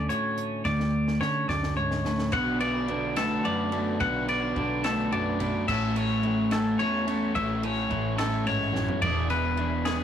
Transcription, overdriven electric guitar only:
2.32 2.61 B3 medium
2.32 2.60 D4 medium
2.32 2.59 F#4 medium
2.32 2.59 B4 loud
2.61 2.87 B3 medium
2.61 2.88 D4 medium
2.61 2.88 F#4 medium
2.61 2.88 B4 medium
2.88 3.16 B3 medium
2.88 3.16 D4 medium
2.88 3.16 F#4 medium
2.88 3.16 B4 medium
3.17 3.42 B3 medium
3.17 3.43 D4 medium
3.17 3.43 F#4 medium
3.17 3.43 B4 medium
3.43 3.72 B3 medium
3.43 3.72 D4 medium
3.43 3.71 F#4 medium
3.43 3.71 B4 medium
3.72 3.98 B3 medium
3.72 3.98 D4 medium
3.72 3.99 F#4 medium
3.72 3.99 B4 medium
3.99 4.27 B3 medium
3.99 4.28 D4 medium
3.99 4.28 F#4 medium
3.99 4.27 B4 medium
4.28 4.55 B3 medium
4.28 4.56 D4 medium
4.28 4.56 F#4 medium
4.28 4.56 B4 medium
4.57 4.84 B3 medium
4.57 4.84 D4 medium
4.57 4.83 F#4 medium
4.57 4.83 B4 medium
4.84 5.10 B3 medium
4.84 5.11 D4 medium
4.84 5.11 F#4 medium
4.84 5.11 B4 medium
5.11 5.40 B3 medium
5.11 5.39 D4 medium
5.11 5.39 F#4 medium
5.11 5.38 B4 medium
5.39 5.67 B3 medium
5.39 5.68 D4 medium
5.39 5.68 F#4 medium
5.39 5.67 B4 medium
5.67 5.95 A3 medium
5.67 5.95 C#4 loud
5.67 5.95 E4 loud
5.67 5.95 A4 loud
5.96 6.22 A3 medium
5.96 6.23 C#4 medium
5.96 6.23 E4 medium
5.96 6.24 A4 medium
6.23 6.51 A3 medium
6.23 6.51 C#4 medium
6.23 6.51 E4 medium
6.23 6.50 A4 medium
6.51 6.78 A3 medium
6.51 6.79 C#4 medium
6.51 6.79 E4 medium
6.51 6.79 A4 medium
6.79 7.06 A3 medium
6.79 7.06 C#4 medium
6.79 7.06 E4 medium
6.79 7.06 A4 loud
7.07 7.34 A3 medium
7.07 7.35 C#4 medium
7.07 7.35 E4 medium
7.07 7.35 A4 medium
7.36 7.63 A3 medium
7.36 7.63 C#4 medium
7.36 7.63 E4 loud
7.36 7.62 A4 loud
7.63 7.89 A3 medium
7.63 7.90 C#4 medium
7.63 7.90 E4 medium
7.63 7.91 A4 medium
7.90 8.17 A3 medium
7.90 8.17 C#4 medium
7.90 8.16 E4 medium
7.90 8.16 A4 medium
8.17 8.44 A3 medium
8.17 8.45 C#4 medium
8.17 8.45 E4 medium
8.17 8.45 A4 medium
8.45 8.73 A3 medium
8.45 8.72 C#4 medium
8.45 8.72 E4 medium
8.45 8.72 A4 medium
8.73 9.01 A3 medium
8.73 9.02 C#4 medium
8.73 9.01 E4 medium
8.73 9.02 A4 medium
9.02 9.30 E3 medium
9.02 9.30 B3 medium
9.02 9.30 D4 loud
9.02 9.30 G#4 loud
9.31 9.56 E3 medium
9.31 9.57 B3 medium
9.31 9.57 D4 medium
9.31 9.58 G#4 medium
9.57 9.85 E3 medium
9.57 9.85 B3 medium
9.57 9.85 D4 medium
9.57 9.85 G#4 medium
9.86 10.04 E3 medium
9.86 10.04 B3 medium
9.86 10.04 D4 medium
9.86 10.04 G#4 medium

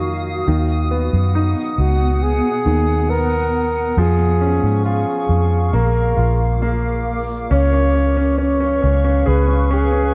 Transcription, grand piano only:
0.00 0.45 D#3 soft
0.00 0.44 A#3 soft
0.47 2.64 D#3 medium
0.91 2.61 B3 soft
1.35 3.05 D#4 soft
2.65 3.93 D#3 soft
3.09 3.94 B3 soft
3.98 5.69 F3 medium
4.41 5.69 C#4 soft
4.85 5.70 F4 soft
5.73 6.60 A#3 soft
6.17 7.47 F4 soft
6.62 7.48 A#3 soft
7.51 7.71 C#4 soft
7.73 7.93 C#4 soft
7.95 8.15 C#4 soft
8.17 8.37 C#4 soft
8.38 8.59 C#4 soft
8.60 8.81 C#4 soft
8.82 9.03 C#4 soft
9.05 9.46 C#4 soft
9.26 10.14 G#4 soft
9.48 9.69 C#4 soft
9.71 9.91 C#4 soft
9.92 10.12 C#4 soft

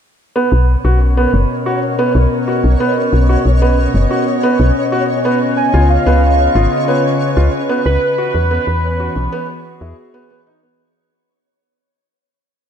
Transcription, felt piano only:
0.36 0.48 B3 medium
0.85 0.97 F#4 medium
1.17 1.30 B3 medium
1.66 1.78 F#4 medium
1.99 2.11 B3 medium
2.47 2.60 F#4 medium
2.80 2.92 B3 loud
3.29 3.41 F#4 medium
3.62 3.74 B3 loud
4.11 4.23 F#4 medium
4.43 4.56 B3 loud
4.92 5.04 F#4 medium
5.25 5.37 B3 loud
5.74 5.86 F4 medium
6.06 6.19 B3 loud
6.55 6.68 F4 medium
6.88 7.00 B3 medium
7.37 7.49 F4 medium
7.69 7.82 B3 medium
8.18 8.31 F#4 medium
8.51 8.63 B3 loud
9.00 9.12 F#4 medium
9.32 9.45 B3 loud
9.81 9.94 E4 medium
10.14 10.29 B3 loud
10.30 10.38 B3 loud
10.47 10.59 D#4 medium
10.63 10.78 B3 medium

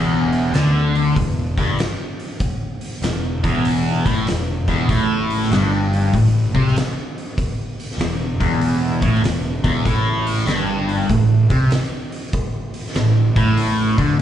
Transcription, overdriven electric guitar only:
0.00 0.53 E2 medium
0.53 1.15 D3 medium
1.16 1.49 E2 medium
1.58 1.78 G2 medium
3.04 3.36 E2 medium
3.43 4.05 E2 loud
4.05 4.26 A2 medium
4.28 4.60 E2 medium
4.68 4.89 E2 medium
4.89 5.51 A2 medium
5.52 6.13 G2 loud
6.14 6.47 A2 medium
6.54 6.75 C3 medium
8.00 8.33 E2 medium
8.40 9.02 E2 loud
9.02 9.23 A2 medium
9.22 9.56 E2 medium
9.64 9.85 E2 medium
9.85 10.47 A2 medium
10.47 11.09 G2 loud
11.09 11.42 A2 medium
11.50 11.71 C3 medium
12.96 13.28 A2 medium
13.36 13.97 A2 loud
13.98 14.18 D3 loud

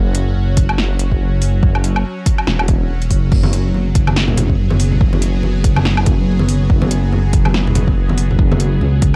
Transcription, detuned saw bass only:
0.00 0.35 F#1 medium
0.36 1.19 F#1 loud
1.21 2.04 F#1 loud
2.48 3.09 E1 loud
3.11 3.30 F#1 loud
3.32 3.73 F#1 loud
3.74 4.57 F#1 loud
4.59 5.42 F#1 loud
5.43 6.26 F#1 medium
6.28 6.68 F#1 loud
6.70 7.11 F#1 loud
7.12 7.95 F#1 loud
7.97 8.80 F#1 loud
8.81 9.16 C#2 medium

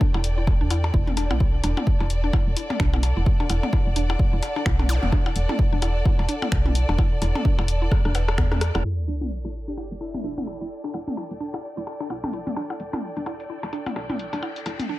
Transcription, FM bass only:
0.14 0.62 E1 loud
0.61 0.91 E2 medium
0.94 1.32 E1 loud
1.31 1.61 B1 loud
1.64 1.75 E1 loud
2.00 2.31 E1 loud
2.47 2.55 E1 medium
2.80 3.13 B1 loud
3.17 3.25 E1 medium
3.50 3.61 E1 medium
3.86 4.17 E1 loud
4.33 4.41 E1 loud
4.66 4.99 B1 loud
5.03 5.11 E1 medium
5.36 5.47 E1 medium
5.72 6.03 E1 medium
6.19 6.27 E1 loud
6.52 6.85 B1 loud
6.89 6.97 E1 medium
7.22 7.33 E1 loud
7.59 7.89 E1 medium
8.05 8.40 E1 loud
8.38 8.71 E2 medium
8.75 8.83 E1 medium
9.08 9.19 E1 medium
9.45 9.75 E1 medium
9.91 9.99 E1 loud
10.24 10.57 B1 loud
10.61 10.69 E1 medium
10.94 11.05 E1 medium
11.31 11.61 E1 medium
11.77 11.85 E1 medium
12.10 12.43 B1 loud
12.47 12.55 E1 medium
12.80 12.91 E1 medium
13.17 13.47 E1 medium
13.63 13.71 E1 loud
13.96 14.29 B1 loud
14.33 14.41 E1 medium
14.66 14.77 E1 medium

